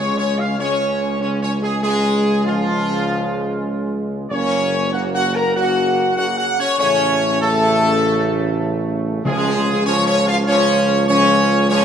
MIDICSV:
0, 0, Header, 1, 6, 480
1, 0, Start_track
1, 0, Key_signature, -5, "major"
1, 0, Tempo, 621118
1, 1411, Time_signature, 4, 2, 24, 8
1, 5252, Tempo, 613497
1, 9205, End_track
2, 0, Start_track
2, 0, Title_t, "Trumpet section"
2, 0, Program_c, 0, 61
2, 0, Note_on_c, 0, 73, 106
2, 123, Note_off_c, 0, 73, 0
2, 140, Note_on_c, 0, 73, 106
2, 286, Note_off_c, 0, 73, 0
2, 302, Note_on_c, 0, 77, 110
2, 454, Note_on_c, 0, 73, 112
2, 457, Note_off_c, 0, 77, 0
2, 901, Note_off_c, 0, 73, 0
2, 932, Note_on_c, 0, 73, 105
2, 1004, Note_off_c, 0, 73, 0
2, 1100, Note_on_c, 0, 73, 112
2, 1170, Note_off_c, 0, 73, 0
2, 1257, Note_on_c, 0, 68, 100
2, 1400, Note_off_c, 0, 68, 0
2, 1409, Note_on_c, 0, 68, 121
2, 1863, Note_off_c, 0, 68, 0
2, 1891, Note_on_c, 0, 65, 116
2, 3061, Note_off_c, 0, 65, 0
2, 3331, Note_on_c, 0, 73, 127
2, 3780, Note_off_c, 0, 73, 0
2, 3810, Note_on_c, 0, 78, 106
2, 3882, Note_off_c, 0, 78, 0
2, 3972, Note_on_c, 0, 78, 118
2, 4120, Note_off_c, 0, 78, 0
2, 4135, Note_on_c, 0, 82, 110
2, 4285, Note_on_c, 0, 78, 117
2, 4292, Note_off_c, 0, 82, 0
2, 4734, Note_off_c, 0, 78, 0
2, 4763, Note_on_c, 0, 78, 115
2, 4914, Note_off_c, 0, 78, 0
2, 4930, Note_on_c, 0, 78, 122
2, 5079, Note_off_c, 0, 78, 0
2, 5095, Note_on_c, 0, 73, 125
2, 5237, Note_off_c, 0, 73, 0
2, 5246, Note_on_c, 0, 73, 127
2, 5700, Note_off_c, 0, 73, 0
2, 5732, Note_on_c, 0, 69, 127
2, 6906, Note_off_c, 0, 69, 0
2, 7177, Note_on_c, 0, 68, 127
2, 7622, Note_off_c, 0, 68, 0
2, 7643, Note_on_c, 0, 73, 127
2, 7796, Note_off_c, 0, 73, 0
2, 7814, Note_on_c, 0, 73, 127
2, 7962, Note_off_c, 0, 73, 0
2, 7970, Note_on_c, 0, 77, 127
2, 8042, Note_off_c, 0, 77, 0
2, 8129, Note_on_c, 0, 73, 127
2, 8578, Note_off_c, 0, 73, 0
2, 8605, Note_on_c, 0, 73, 127
2, 9056, Note_off_c, 0, 73, 0
2, 9087, Note_on_c, 0, 73, 127
2, 9205, Note_off_c, 0, 73, 0
2, 9205, End_track
3, 0, Start_track
3, 0, Title_t, "French horn section"
3, 0, Program_c, 1, 60
3, 0, Note_on_c, 1, 61, 106
3, 118, Note_off_c, 1, 61, 0
3, 128, Note_on_c, 1, 61, 104
3, 279, Note_off_c, 1, 61, 0
3, 291, Note_on_c, 1, 65, 102
3, 363, Note_off_c, 1, 65, 0
3, 456, Note_on_c, 1, 61, 108
3, 903, Note_off_c, 1, 61, 0
3, 928, Note_on_c, 1, 61, 111
3, 1078, Note_off_c, 1, 61, 0
3, 1097, Note_on_c, 1, 61, 99
3, 1243, Note_off_c, 1, 61, 0
3, 1255, Note_on_c, 1, 56, 98
3, 1326, Note_off_c, 1, 56, 0
3, 1414, Note_on_c, 1, 56, 118
3, 1865, Note_off_c, 1, 56, 0
3, 1895, Note_on_c, 1, 53, 116
3, 3063, Note_off_c, 1, 53, 0
3, 3333, Note_on_c, 1, 61, 127
3, 3781, Note_off_c, 1, 61, 0
3, 3810, Note_on_c, 1, 66, 117
3, 3963, Note_off_c, 1, 66, 0
3, 3972, Note_on_c, 1, 66, 121
3, 4120, Note_off_c, 1, 66, 0
3, 4137, Note_on_c, 1, 70, 117
3, 4282, Note_off_c, 1, 70, 0
3, 4294, Note_on_c, 1, 66, 122
3, 4739, Note_off_c, 1, 66, 0
3, 4767, Note_on_c, 1, 66, 122
3, 4839, Note_off_c, 1, 66, 0
3, 4924, Note_on_c, 1, 66, 110
3, 4997, Note_off_c, 1, 66, 0
3, 5089, Note_on_c, 1, 61, 108
3, 5238, Note_off_c, 1, 61, 0
3, 5249, Note_on_c, 1, 61, 127
3, 5701, Note_off_c, 1, 61, 0
3, 5737, Note_on_c, 1, 57, 127
3, 6908, Note_off_c, 1, 57, 0
3, 7169, Note_on_c, 1, 56, 127
3, 7618, Note_off_c, 1, 56, 0
3, 7651, Note_on_c, 1, 61, 127
3, 7724, Note_off_c, 1, 61, 0
3, 7814, Note_on_c, 1, 61, 127
3, 7885, Note_off_c, 1, 61, 0
3, 7975, Note_on_c, 1, 65, 127
3, 8046, Note_off_c, 1, 65, 0
3, 8137, Note_on_c, 1, 61, 127
3, 8583, Note_off_c, 1, 61, 0
3, 8612, Note_on_c, 1, 61, 127
3, 9059, Note_off_c, 1, 61, 0
3, 9088, Note_on_c, 1, 61, 127
3, 9205, Note_off_c, 1, 61, 0
3, 9205, End_track
4, 0, Start_track
4, 0, Title_t, "Trombone section"
4, 0, Program_c, 2, 61
4, 0, Note_on_c, 2, 49, 94
4, 0, Note_on_c, 2, 56, 93
4, 423, Note_off_c, 2, 49, 0
4, 424, Note_off_c, 2, 56, 0
4, 447, Note_on_c, 2, 49, 95
4, 448, Note_on_c, 2, 56, 90
4, 898, Note_off_c, 2, 49, 0
4, 899, Note_off_c, 2, 56, 0
4, 928, Note_on_c, 2, 49, 92
4, 929, Note_on_c, 2, 56, 91
4, 1378, Note_off_c, 2, 49, 0
4, 1379, Note_off_c, 2, 56, 0
4, 1405, Note_on_c, 2, 49, 94
4, 1407, Note_on_c, 2, 56, 98
4, 1860, Note_off_c, 2, 49, 0
4, 1862, Note_off_c, 2, 56, 0
4, 1894, Note_on_c, 2, 56, 103
4, 1895, Note_on_c, 2, 49, 112
4, 3304, Note_off_c, 2, 49, 0
4, 3304, Note_off_c, 2, 56, 0
4, 3337, Note_on_c, 2, 49, 96
4, 3339, Note_on_c, 2, 58, 101
4, 3783, Note_off_c, 2, 49, 0
4, 3784, Note_off_c, 2, 58, 0
4, 3814, Note_on_c, 2, 49, 95
4, 3814, Note_on_c, 2, 58, 103
4, 4260, Note_off_c, 2, 49, 0
4, 4260, Note_off_c, 2, 58, 0
4, 4291, Note_on_c, 2, 58, 98
4, 4292, Note_on_c, 2, 49, 101
4, 4737, Note_off_c, 2, 58, 0
4, 4738, Note_off_c, 2, 49, 0
4, 4766, Note_on_c, 2, 49, 99
4, 4768, Note_on_c, 2, 58, 93
4, 5119, Note_off_c, 2, 49, 0
4, 5119, Note_off_c, 2, 58, 0
4, 5250, Note_on_c, 2, 49, 109
4, 5251, Note_on_c, 2, 57, 110
4, 5702, Note_off_c, 2, 49, 0
4, 5725, Note_off_c, 2, 57, 0
4, 5734, Note_on_c, 2, 57, 120
4, 5735, Note_on_c, 2, 49, 119
4, 7145, Note_off_c, 2, 49, 0
4, 7145, Note_off_c, 2, 57, 0
4, 7174, Note_on_c, 2, 53, 123
4, 7175, Note_on_c, 2, 49, 121
4, 7621, Note_off_c, 2, 49, 0
4, 7621, Note_off_c, 2, 53, 0
4, 7651, Note_on_c, 2, 49, 118
4, 7653, Note_on_c, 2, 53, 119
4, 8100, Note_off_c, 2, 49, 0
4, 8101, Note_off_c, 2, 53, 0
4, 8127, Note_on_c, 2, 49, 110
4, 8129, Note_on_c, 2, 53, 126
4, 8578, Note_off_c, 2, 49, 0
4, 8578, Note_off_c, 2, 53, 0
4, 8609, Note_on_c, 2, 53, 116
4, 8610, Note_on_c, 2, 49, 112
4, 9058, Note_off_c, 2, 53, 0
4, 9059, Note_off_c, 2, 49, 0
4, 9085, Note_on_c, 2, 49, 127
4, 9086, Note_on_c, 2, 53, 127
4, 9205, Note_off_c, 2, 49, 0
4, 9205, Note_off_c, 2, 53, 0
4, 9205, End_track
5, 0, Start_track
5, 0, Title_t, "Timpani"
5, 0, Program_c, 3, 47
5, 0, Note_on_c, 3, 49, 122
5, 183, Note_off_c, 3, 49, 0
5, 7173, Note_on_c, 3, 49, 121
5, 7860, Note_off_c, 3, 49, 0
5, 9205, End_track
6, 0, Start_track
6, 0, Title_t, "Tuba"
6, 0, Program_c, 4, 58
6, 0, Note_on_c, 4, 37, 100
6, 3302, Note_off_c, 4, 37, 0
6, 3330, Note_on_c, 4, 30, 104
6, 5000, Note_off_c, 4, 30, 0
6, 5250, Note_on_c, 4, 33, 117
6, 7144, Note_off_c, 4, 33, 0
6, 7169, Note_on_c, 4, 37, 118
6, 9205, Note_off_c, 4, 37, 0
6, 9205, End_track
0, 0, End_of_file